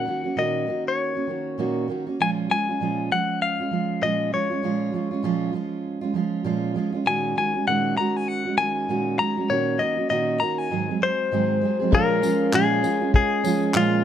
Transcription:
Already playing: F#5
0.05 D#3 A#3 C#4 F#4
0.24 A#3 C#4 F#4
0.36 A#2 D#3 A#3 C#4 F#4 D#5
0.66 D#3 A#3 C#4 F#4
0.88 C#5
1.15 A#3 C#4 F#4
1.27 D#3 A#3 C#4 F#4
1.58 A#2 D#3 A#3 C#4 F#4
1.88 D#3 A#3 C#4 F#4
2.07 A#3 C#4 F#4
2.19 A#2 F3 G#3 C#4 F4 G#5
2.50 F3 G#3 C#4 F4 G#5
2.68 G#3 C#4 F4
2.80 A#2 F3 G#3 C#4 F4
3.11 F3 G#3 C#4 F#5
3.42 F5
3.60 G#3 C#4 F4
3.71 F3 G#3 C#4 F4
4.02 A#2 F3 G#3 C#4 F4 D#5
4.32 F3 G#3 C#4 F4 C#5
4.50 G#3 C#4 F4
4.63 A#2 F3 G#3 C#4 F4
4.92 F3 G#3 C#4 F4
5.11 G#3 C#4 F4
5.23 A#2 F3 G#3 C#4 F4
5.53 F3 G#3 C#4 F4
6.01 G#3 C#4 F4
6.14 F3 G#3 C#4 F4
6.44 A#2 F3 G#3 C#4 F4
6.74 F3 G#3 C#4 F4
6.92 G#3 C#4 F4
7.05 A#2 D#3 G#3 C#4 F#4 G#5
7.36 D#3 G#3 C#4 F#4 G#5
7.54 G#3 C#4 F#4
7.67 A#2 D#3 G#3 C#4 F#4 F#5
7.97 D#3 G#3 C#4 F#4 A#5
8.16 G#5
8.28 F#5
8.45 G#3 C#4 F#4
8.57 D#3 G#3 C#4 F#4 G#5
8.88 A#2 D#3 G#3 C#4 F#4
9.18 D#3 G#3 C#4 A#5
9.37 G#3 C#4 F#4
9.49 A#2 D#3 A#3 C#4 F#4 C#5
9.79 D#3 A#3 C#4 F#4 D#5
9.97 A#3 C#4 F#4
10.10 A#2 D#3 A#3 C#4 F#4 D#5
10.40 D#3 A#3 C#4 F#4 A#5
10.58 G#5
10.70 G#2 D#3 F#3 G#3 C4 G#4
10.89 F#3 G#3 C4 G#4
11.01 F#3 G#3 G#4 C5
11.32 G#2 D#3 F#3 G#3 C4 G#4
11.61 F#3 G#3 C4 G#4
11.80 F#3 G#3 C4 G#4
11.91 A#2 F3 G#3 C#4 F4 G#4 A#4 F5, kick
12.22 F3 G#3 C#4 F4, tambourine
12.53 A#2 F3 G#3 C#4 F4 G#4, clap
12.83 F3 G#3 C#4 F4, tambourine
13.01 G#3 C#4 F4
13.14 G#3 G#4, kick
13.44 F3 G#3 C#4 F4, tambourine
13.74 A#2 F3 G#3 C#4 F4, clap

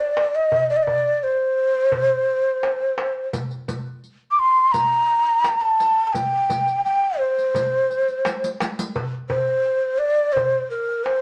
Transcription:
0.00 D5
0.17 darbuka tek
0.35 D#5
0.52 darbuka dum
0.70 D5, darbuka ka
0.76 D#5
0.83 D5
0.87 darbuka dum
1.23 C5
1.75 darbuka ka
1.92 darbuka dum
2.63 darbuka tek
2.81 darbuka ka
2.98 darbuka tek
3.33 riq, darbuka dum
3.51 riq, darbuka ka
3.68 riq, darbuka dum
4.04 riq
4.31 D6
4.39 C6
4.58 darbuka ka
4.72 A#5, riq, darbuka dum
4.92 riq
5.44 riq, darbuka tek
5.61 A5, darbuka ka
5.80 riq
6.07 A5
6.13 G5, riq, darbuka dum
6.32 darbuka ka
6.50 riq, darbuka dum
6.67 riq, darbuka ka
6.84 G5, riq
7.18 C5, darbuka ka
7.38 riq, darbuka ka
7.55 riq, darbuka dum
7.72 darbuka ka
7.90 riq, darbuka ka
8.08 riq
8.25 riq, darbuka tek
8.43 riq, darbuka ka
8.60 riq, darbuka tek
8.79 riq
8.96 darbuka dum
9.13 darbuka ka
9.29 C5, darbuka dum
9.48 darbuka ka
9.65 darbuka ka
9.99 D5
10.33 C5, darbuka dum
10.53 darbuka ka
10.70 A#4
10.89 darbuka ka
11.05 C5, darbuka tek

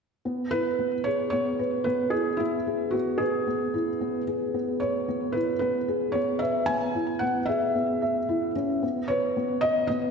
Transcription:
0.25 B3
0.51 E4 B4
0.79 B3
1.04 G#4 C#5
1.30 B3 C#5
1.59 B4
1.84 B3 B4
2.10 E4 G#4
2.37 B3 E4
2.67 G#4
2.91 B3 F#4
3.18 G#4 B4
3.47 B3
3.74 E4
4.01 B3
4.27 G#4
4.54 B3
4.80 B4 C#5
5.08 B3
5.32 E4 B4
5.59 B3 B4
5.88 G#4
6.12 B3 C#5
6.39 B4 E5
6.66 B3 G#5
6.95 E4
7.19 B3 F#5
7.46 G#4 E5
7.75 B3
8.02 E5
8.29 E4
8.56 C#4
8.83 B3
9.08 B4 C#5
9.37 B3
9.61 D#5
9.87 B3 D#5

